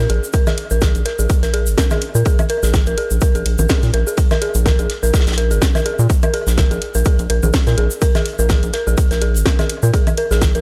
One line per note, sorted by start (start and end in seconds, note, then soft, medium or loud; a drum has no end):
0.09 0.20 A#1 loud
0.09 0.18 G#4 medium
0.09 closed hi-hat medium
0.24 shaker medium
0.33 0.40 A#4 medium
0.33 kick loud
0.33 closed hi-hat medium
0.33 shaker medium
0.47 0.54 G#4 medium
0.47 snare medium
0.47 closed hi-hat soft
0.47 low conga medium
0.47 low woodblock medium
0.47 shaker soft
0.57 closed hi-hat medium
0.70 0.89 A#1 loud
0.70 0.76 A#4 medium
0.70 shaker medium
0.81 0.90 G#4 medium
0.81 kick loud
0.81 snare loud
0.81 closed hi-hat medium
0.81 low conga medium
0.81 shaker medium
0.95 1.03 A#1 medium
0.95 closed hi-hat soft
0.95 shaker soft
1.05 1.11 A#4 medium
1.05 snare soft
1.05 closed hi-hat medium
1.19 1.27 A#1 medium
1.19 1.26 G#4 medium
1.19 shaker medium
1.29 kick loud
1.29 closed hi-hat medium
1.29 shaker medium
1.43 1.69 A#1 medium
1.43 1.48 A#4 medium
1.43 snare soft
1.43 closed hi-hat soft
1.43 shaker soft
1.54 1.62 G#4 medium
1.54 closed hi-hat loud
1.54 closed hi-hat medium
1.66 1.75 G#1 loud
1.66 closed hi-hat soft
1.66 shaker medium
1.78 1.83 A#4 medium
1.78 kick loud
1.78 snare loud
1.78 closed hi-hat medium
1.78 shaker medium
1.90 1.98 G#4 medium
1.90 snare soft
1.90 closed hi-hat soft
1.90 low conga medium
1.90 low woodblock medium
1.90 shaker soft
2.01 closed hi-hat medium
2.15 2.23 A#2 medium
2.15 2.20 A#4 medium
2.15 shaker medium
2.25 2.34 G#4 medium
2.25 kick loud
2.25 closed hi-hat medium
2.25 shaker medium
2.39 closed hi-hat soft
2.39 low conga medium
2.39 low woodblock medium
2.39 shaker soft
2.49 2.56 A#4 medium
2.49 closed hi-hat medium
2.63 2.81 A#1 loud
2.63 2.70 G#4 medium
2.63 snare soft
2.63 shaker medium
2.74 kick loud
2.74 snare loud
2.74 closed hi-hat medium
2.74 low conga medium
2.74 shaker medium
2.87 2.95 A#1 loud
2.87 2.92 A#4 medium
2.87 closed hi-hat soft
2.87 shaker soft
2.98 3.06 G#4 medium
2.98 closed hi-hat medium
3.11 3.19 A#1 medium
3.11 shaker medium
3.21 3.28 A#4 medium
3.21 kick loud
3.21 closed hi-hat medium
3.21 shaker medium
3.35 3.43 A#1 loud
3.35 3.42 G#4 medium
3.35 closed hi-hat soft
3.35 shaker soft
3.46 3.56 A#1 medium
3.46 closed hi-hat loud
3.46 closed hi-hat medium
3.58 3.67 A#1 medium
3.58 3.64 A#4 medium
3.58 low conga medium
3.58 shaker medium
3.69 3.78 G#4 medium
3.69 kick loud
3.69 snare loud
3.69 closed hi-hat medium
3.69 open hi-hat medium
3.69 shaker medium
3.83 3.91 A#2 medium
3.83 snare soft
3.83 closed hi-hat soft
3.83 shaker soft
3.93 4.04 A#1 loud
3.93 4.00 A#4 medium
3.93 closed hi-hat medium
3.93 closed hi-hat loud
4.07 4.14 G#4 medium
4.07 shaker medium
4.17 kick loud
4.17 closed hi-hat loud
4.17 closed hi-hat medium
4.17 shaker medium
4.31 4.36 A#4 medium
4.31 snare medium
4.31 closed hi-hat soft
4.31 low conga medium
4.31 low woodblock medium
4.31 shaker soft
4.42 4.50 G#4 medium
4.42 closed hi-hat medium
4.55 4.73 A#1 loud
4.55 closed hi-hat soft
4.55 shaker medium
4.66 4.72 A#4 medium
4.66 kick loud
4.66 snare loud
4.66 closed hi-hat medium
4.66 low conga medium
4.66 shaker medium
4.79 4.87 A#1 loud
4.79 4.86 G#4 medium
4.79 closed hi-hat soft
4.79 shaker soft
4.90 snare soft
4.90 closed hi-hat loud
4.90 closed hi-hat medium
5.03 5.11 A#1 medium
5.03 5.08 A#4 medium
5.03 shaker medium
5.13 5.22 G#4 medium
5.13 kick loud
5.13 snare medium
5.13 closed hi-hat medium
5.13 shaker medium
5.20 snare medium
5.20 closed hi-hat medium
5.27 5.53 A#1 medium
5.27 snare medium
5.27 closed hi-hat soft
5.27 closed hi-hat medium
5.27 shaker soft
5.32 snare medium
5.32 closed hi-hat medium
5.38 5.43 A#4 medium
5.38 closed hi-hat loud
5.38 closed hi-hat medium
5.51 5.59 G#1 loud
5.51 5.58 G#4 medium
5.51 closed hi-hat soft
5.51 shaker medium
5.62 kick loud
5.62 snare loud
5.62 closed hi-hat medium
5.62 shaker medium
5.75 5.80 A#4 medium
5.75 snare soft
5.75 closed hi-hat soft
5.75 low conga medium
5.75 low woodblock medium
5.75 shaker soft
5.86 5.94 G#4 medium
5.86 closed hi-hat medium
5.99 6.07 A#2 medium
5.99 shaker medium
6.09 kick loud
6.09 closed hi-hat medium
6.09 shaker medium
6.23 6.28 A#4 medium
6.23 closed hi-hat soft
6.23 low conga medium
6.23 low woodblock medium
6.23 shaker soft
6.33 6.40 G#4 medium
6.33 closed hi-hat medium
6.47 6.65 A#1 loud
6.47 snare medium
6.47 shaker medium
6.58 6.63 A#4 medium
6.58 kick loud
6.58 snare loud
6.58 closed hi-hat medium
6.58 closed hi-hat loud
6.58 low conga medium
6.58 shaker medium
6.71 6.79 A#1 loud
6.71 6.76 G#4 medium
6.71 closed hi-hat soft
6.71 shaker soft
6.82 closed hi-hat medium
6.94 7.03 A#1 medium
6.94 7.00 A#4 medium
6.94 shaker medium
7.05 7.12 G#4 medium
7.05 kick loud
7.05 closed hi-hat medium
7.05 shaker medium
7.19 7.27 A#1 loud
7.19 closed hi-hat soft
7.19 shaker soft
7.30 7.40 A#1 medium
7.30 7.36 A#4 medium
7.30 closed hi-hat medium
7.30 closed hi-hat loud
7.43 7.51 A#1 loud
7.43 7.48 G#4 medium
7.43 low conga medium
7.43 shaker medium
7.53 kick loud
7.53 snare medium
7.53 snare loud
7.53 closed hi-hat medium
7.53 open hi-hat medium
7.53 shaker medium
7.67 7.75 A#2 medium
7.67 7.72 A#4 medium
7.67 snare soft
7.67 closed hi-hat soft
7.67 shaker soft
7.78 7.88 A#1 loud
7.78 7.83 G#4 medium
7.78 closed hi-hat medium
7.91 shaker medium
8.02 8.08 A#4 medium
8.02 kick loud
8.02 closed hi-hat medium
8.02 shaker medium
8.15 8.20 G#4 medium
8.15 snare medium
8.15 closed hi-hat soft
8.15 low conga medium
8.15 low woodblock medium
8.15 shaker soft
8.26 closed hi-hat medium
8.39 8.57 A#1 loud
8.39 8.44 A#4 medium
8.39 shaker medium
8.49 8.56 G#4 medium
8.49 kick loud
8.49 snare loud
8.49 closed hi-hat medium
8.49 low conga medium
8.49 shaker medium
8.63 8.71 A#1 loud
8.63 closed hi-hat soft
8.63 shaker soft
8.73 8.80 A#4 medium
8.73 snare soft
8.73 closed hi-hat medium
8.87 8.95 A#1 medium
8.87 8.92 G#4 medium
8.87 shaker medium
8.97 kick loud
8.97 closed hi-hat medium
8.97 shaker medium
9.11 9.37 A#1 medium
9.11 9.16 A#4 medium
9.11 snare soft
9.11 closed hi-hat soft
9.11 shaker soft
9.21 9.28 G#4 medium
9.21 closed hi-hat medium
9.34 9.43 G#1 loud
9.34 closed hi-hat soft
9.34 shaker medium
9.46 9.52 A#4 medium
9.46 kick loud
9.46 snare loud
9.46 closed hi-hat medium
9.46 shaker medium
9.59 9.64 G#4 medium
9.59 snare soft
9.59 closed hi-hat soft
9.59 low conga medium
9.59 low woodblock soft
9.59 shaker soft
9.69 closed hi-hat medium
9.83 9.91 A#2 medium
9.83 9.88 A#4 medium
9.83 shaker medium
9.94 10.00 G#4 medium
9.94 kick loud
9.94 closed hi-hat medium
9.94 shaker medium
10.07 closed hi-hat soft
10.07 low conga medium
10.07 low woodblock soft
10.07 shaker soft
10.17 10.24 A#4 medium
10.17 closed hi-hat medium
10.31 10.49 A#1 loud
10.31 10.36 G#4 medium
10.31 snare medium
10.31 shaker medium
10.41 kick loud
10.41 snare loud
10.41 closed hi-hat medium
10.41 low conga medium
10.41 shaker medium
10.55 10.61 A#1 loud
10.55 10.60 A#4 medium
10.55 closed hi-hat soft
10.55 shaker soft